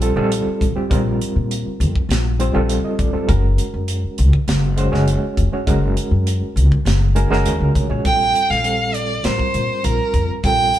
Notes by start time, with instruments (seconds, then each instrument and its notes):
Already playing: upright bass A#1
0.01 reed electric piano G3 C4 F4 A4, closed hi-hat
0.16 upright bass A#1, reed electric piano G3 C4 F4 A4
0.32 closed hi-hat
0.46 muted upright bass stroke
0.61 upright bass A1, kick, closed hi-hat
0.75 reed electric piano G3 C4 F4 G4, muted upright bass stroke
0.90 upright bass A#1, reed electric piano G3 C4 F4 A#4, kick, closed hi-hat
1.21 closed hi-hat
1.36 upright bass A#2
1.51 closed hi-hat
1.66 muted upright bass stroke
1.80 upright bass F2, closed hi-hat
1.96 muted upright bass stroke, kick
2.09 upright bass A#1, snare, closed hi-hat
2.39 reed electric piano G3 C4 F4 C5 G5, closed hi-hat
2.54 upright bass A#1, reed electric piano G3 C4 F4 A4
2.69 reed electric piano F5, closed hi-hat
2.84 reed electric piano D#5, muted upright bass stroke
2.99 upright bass A1, reed electric piano D5, kick, closed hi-hat
3.13 reed electric piano G3 C4 F4 A4, muted upright bass stroke
3.27 upright bass F#1, reed electric piano G#3 C#4 F#4 A#4, kick, closed hi-hat
3.58 closed hi-hat
3.74 upright bass F#2
3.88 closed hi-hat
4.04 muted upright bass stroke
4.18 upright bass C#2, closed hi-hat
4.33 muted upright bass stroke, kick
4.48 upright bass F#1, snare, closed hi-hat
4.77 reed electric piano G#3 C#4 F#4 C5, closed hi-hat
4.92 upright bass F#1, reed electric piano G#3 C#4 F#4 C#5, snare
5.08 closed hi-hat
5.37 upright bass F1, kick, closed hi-hat
5.52 reed electric piano G#3 C#4 F#4 C#5, muted upright bass stroke
5.67 upright bass F#1, reed electric piano G#3 C#4 F#4 A#4, kick, closed hi-hat
5.97 closed hi-hat
6.11 upright bass F#2
6.27 closed hi-hat
6.42 muted upright bass stroke
6.56 upright bass C#2, closed hi-hat
6.72 muted upright bass stroke, kick
6.85 upright bass F#1, snare, closed hi-hat
7.15 reed electric piano G#3 C#4 F#4 A#4 G#5, closed hi-hat
7.30 upright bass F#1, reed electric piano G#3 C#4 F#4 A#4 F#5, snare
7.44 upright bass D#2, reed electric piano F5, closed hi-hat
7.60 upright bass C#2
7.75 upright bass C2, reed electric piano C#5, kick, closed hi-hat
7.90 upright bass A#1, reed electric piano G#3 C#4 F#4 C#5
8.04 upright bass A#1, reed electric piano G3 C4 F4 A4, violin G5, kick, closed hi-hat
8.35 closed hi-hat
8.50 upright bass A#1, violin F5, snare
8.63 reed electric piano G3 C4 F4 A4, closed hi-hat
8.94 violin D5, closed hi-hat
9.23 upright bass A1, reed electric piano G3 C4 F4 A#4, violin C5, snare, closed hi-hat
9.39 kick
9.54 upright bass A#2, closed hi-hat
9.83 upright bass A#1, reed electric piano G3 C4 F4 A#4, violin A#4, closed hi-hat
10.14 upright bass F2, kick, closed hi-hat
10.29 muted upright bass stroke
10.44 upright bass A#1, reed electric piano G3 C4 F4 A4, violin G5, kick, closed hi-hat
10.74 closed hi-hat